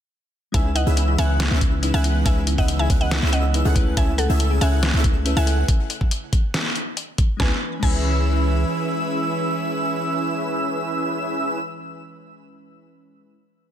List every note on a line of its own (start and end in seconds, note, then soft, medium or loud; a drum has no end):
0.52 0.85 C#2 medium
0.52 5.64 C#3 medium
0.52 3.72 E3 medium
0.52 1.79 G#3 medium
0.52 0.60 B3 medium
0.52 3.72 B3 medium
0.52 1.80 C#4 medium
0.52 0.69 C#4 medium
0.52 1.80 D#4 medium
0.52 0.69 E4 medium
0.52 1.81 E4 medium
0.52 0.69 G#4 medium
0.52 0.69 B4 medium
0.52 1.81 B4 medium
0.52 0.69 E5 medium
0.52 0.69 E5 loud
0.52 0.69 G#5 medium
0.52 0.69 E6 loud
0.52 kick loud
0.52 closed hi-hat medium
0.65 0.69 C#4 medium
0.75 0.82 E4 loud
0.75 1.04 D#5 medium
0.75 1.04 F#5 loud
0.75 closed hi-hat medium
0.87 1.16 C#2 medium
0.87 0.92 B3 loud
0.87 1.16 C#4 medium
0.87 1.16 E4 medium
0.87 1.16 G#4 medium
0.87 1.16 B4 medium
0.87 1.16 E5 medium
0.87 1.16 E6 medium
0.97 1.03 C#4 medium
0.97 closed hi-hat medium
1.08 1.12 E4 loud
1.18 1.49 C#2 loud
1.18 1.22 B3 loud
1.18 1.48 C#4 medium
1.18 1.48 E4 medium
1.18 1.48 G#4 medium
1.18 1.48 B4 medium
1.18 1.47 E5 medium
1.18 1.48 F#5 medium
1.18 1.47 G#5 loud
1.18 1.48 F#6 medium
1.18 closed hi-hat medium
1.30 1.35 C#4 medium
1.40 1.46 E4 medium
1.40 snare loud
1.40 closed hi-hat medium
1.51 1.92 C#2 loud
1.51 1.57 B3 medium
1.51 1.91 C#4 medium
1.51 1.91 E4 medium
1.51 1.91 G#4 medium
1.51 1.91 B4 medium
1.51 1.91 E5 loud
1.51 1.91 E6 loud
1.61 1.67 C#4 loud
1.61 kick loud
1.61 closed hi-hat medium
1.73 1.81 E4 medium
1.82 2.23 G#3 loud
1.82 1.89 B3 medium
1.82 2.23 C#4 medium
1.82 2.23 D#4 medium
1.82 2.23 E4 medium
1.82 2.24 B4 loud
1.82 closed hi-hat medium
1.94 2.24 C#2 loud
1.94 1.97 C#4 loud
1.94 2.23 C#4 medium
1.94 2.23 E4 medium
1.94 2.23 G#4 medium
1.94 2.23 B4 medium
1.94 2.15 E5 medium
1.94 2.23 F#5 loud
1.94 2.15 G#5 loud
1.94 2.23 F#6 medium
2.04 2.10 E4 loud
2.04 closed hi-hat medium
2.15 2.21 B3 medium
2.24 2.56 C#2 medium
2.24 3.51 G#3 medium
2.24 2.32 B3 medium
2.24 3.51 C#4 medium
2.24 2.40 C#4 loud
2.24 3.52 D#4 medium
2.24 2.40 E4 medium
2.24 3.52 E4 medium
2.24 2.40 G#4 medium
2.24 2.40 B4 medium
2.24 2.40 E5 loud
2.24 2.47 E5 medium
2.24 2.47 G#5 medium
2.24 2.40 E6 loud
2.24 kick loud
2.24 closed hi-hat medium
2.28 3.53 B4 loud
2.37 2.40 C#4 medium
2.47 2.53 E4 loud
2.47 closed hi-hat medium
2.58 2.88 C#2 loud
2.58 2.64 B3 loud
2.58 2.87 C#4 medium
2.58 2.87 E4 medium
2.58 2.87 G#4 medium
2.58 2.87 B4 medium
2.58 2.72 D#5 medium
2.58 2.87 E5 medium
2.58 2.72 F#5 medium
2.58 2.87 E6 medium
2.58 kick medium
2.68 2.75 C#4 medium
2.68 closed hi-hat medium
2.79 2.83 E4 loud
2.79 2.93 E5 medium
2.79 2.93 G#5 medium
2.90 3.20 C#2 loud
2.90 2.93 B3 loud
2.90 3.20 C#4 medium
2.90 3.20 E4 medium
2.90 3.20 G#4 medium
2.90 3.20 B4 medium
2.90 3.20 F#5 loud
2.90 3.20 F#6 medium
2.90 kick loud
2.90 closed hi-hat medium
3.01 3.07 C#4 medium
3.01 3.22 D#5 medium
3.01 3.22 F#5 loud
3.11 3.17 E4 medium
3.11 snare loud
3.11 closed hi-hat medium
3.22 3.63 C#2 loud
3.22 3.28 B3 medium
3.22 3.63 C#4 medium
3.22 3.63 E4 medium
3.22 3.63 G#4 medium
3.22 3.63 B4 medium
3.22 3.63 E5 loud
3.22 3.63 E6 loud
3.33 3.39 C#4 loud
3.33 3.54 D#5 medium
3.33 3.54 F#5 medium
3.33 closed hi-hat medium
3.44 3.52 E4 medium
3.53 3.65 G#3 medium
3.53 3.60 B3 medium
3.53 3.65 C#4 medium
3.53 3.65 D#4 medium
3.53 3.66 E4 medium
3.53 3.66 B4 medium
3.53 closed hi-hat medium
3.65 3.95 C#2 loud
3.65 3.69 C#4 loud
3.65 3.95 C#4 medium
3.65 3.95 E4 medium
3.65 3.95 G#4 medium
3.65 3.95 A4 medium
3.65 3.95 F#5 medium
3.65 3.95 F#6 loud
3.74 3.94 A3 loud
3.74 5.67 A3 medium
3.74 3.94 C#4 loud
3.74 3.95 E4 loud
3.74 3.82 G#4 loud
3.74 3.95 G#4 loud
3.74 3.95 B4 loud
3.74 5.67 G#5 medium
3.74 kick loud
3.74 closed hi-hat medium
3.87 3.92 C#4 medium
3.95 4.27 C#2 loud
3.95 5.22 A3 medium
3.95 5.23 C#4 medium
3.95 4.03 C#4 medium
3.95 4.12 C#4 medium
3.95 5.23 E4 medium
3.95 4.12 E4 medium
3.95 4.12 G#4 medium
3.95 5.24 G#4 medium
3.95 4.12 A4 medium
3.95 4.12 E5 loud
3.95 4.11 E5 medium
3.95 4.11 G#5 loud
3.95 4.12 E6 loud
3.95 kick loud
3.95 closed hi-hat medium
3.99 5.24 B4 medium
4.08 4.11 E4 medium
4.18 4.25 G#4 loud
4.18 4.47 A4 medium
4.18 4.47 F#5 loud
4.18 closed hi-hat medium
4.30 4.59 C#2 loud
4.30 4.35 C#4 loud
4.30 4.59 C#4 medium
4.30 4.59 E4 medium
4.30 4.59 G#4 medium
4.30 4.59 A4 medium
4.30 4.59 E5 medium
4.30 4.59 E6 medium
4.40 4.46 E4 medium
4.40 closed hi-hat medium
4.51 4.54 G#4 loud
4.61 4.92 C#2 loud
4.61 4.65 C#4 loud
4.61 4.91 C#4 medium
4.61 4.91 E4 medium
4.61 4.91 G#4 medium
4.61 4.91 A4 medium
4.61 4.90 E5 medium
4.61 4.91 F#5 medium
4.61 4.90 G#5 loud
4.61 4.91 F#6 medium
4.61 closed hi-hat medium
4.72 4.78 E4 medium
4.83 4.89 G#4 medium
4.83 snare loud
4.83 closed hi-hat medium
4.94 5.34 C#2 loud
4.94 4.99 C#4 medium
4.94 5.34 C#4 loud
4.94 5.34 E4 medium
4.94 5.34 G#4 medium
4.94 5.34 A4 medium
4.94 5.34 E5 loud
4.94 5.34 E6 loud
5.04 5.10 E4 loud
5.04 kick loud
5.04 closed hi-hat medium
5.15 5.24 G#4 medium
5.25 5.65 A3 medium
5.25 5.66 C#4 medium
5.25 5.32 C#4 medium
5.25 5.66 E4 medium
5.25 5.66 G#4 medium
5.25 5.66 B4 loud
5.25 closed hi-hat medium
5.37 5.64 C#2 loud
5.37 5.66 C#4 medium
5.37 5.40 E4 loud
5.37 5.66 E4 medium
5.37 5.66 G#4 medium
5.37 5.66 A4 medium
5.37 5.58 E5 medium
5.37 5.66 F#5 loud
5.37 5.58 G#5 loud
5.37 5.66 F#6 loud
5.47 5.53 G#4 loud
5.47 closed hi-hat medium
5.58 5.64 C#4 medium
5.68 kick loud
5.68 closed hi-hat medium
5.90 closed hi-hat medium
6.01 kick medium
6.11 closed hi-hat medium
6.33 kick loud
6.33 closed hi-hat medium
6.54 snare loud
6.54 closed hi-hat medium
6.76 closed hi-hat medium
6.97 closed hi-hat medium
7.18 kick loud
7.18 closed hi-hat medium
7.37 7.52 C#2 medium
7.37 11.59 E3 medium
7.37 7.51 G#3 medium
7.37 7.52 B3 loud
7.37 7.51 C#4 medium
7.37 7.52 C#4 medium
7.37 11.59 C#4 medium
7.37 7.52 E4 medium
7.37 7.52 G#4 medium
7.37 7.52 B4 medium
7.37 11.59 B4 medium
7.37 7.52 E5 medium
7.37 7.52 G#5 medium
7.37 7.52 E6 loud
7.37 kick loud
7.37 snare medium
7.41 7.53 E4 medium
7.41 7.54 B4 loud
7.80 8.64 C#2 loud
7.80 12.11 G#3 medium
7.80 7.95 B3 medium
7.80 12.12 C#4 medium
7.80 11.59 C#4 medium
7.80 11.59 E4 medium
7.80 11.59 G#4 medium
7.80 11.59 B4 medium
7.80 11.59 E5 medium
7.80 12.14 G#5 loud
7.80 11.59 E6 medium
7.80 kick loud
7.80 crash medium
7.84 12.16 E4 medium
7.84 12.17 B4 loud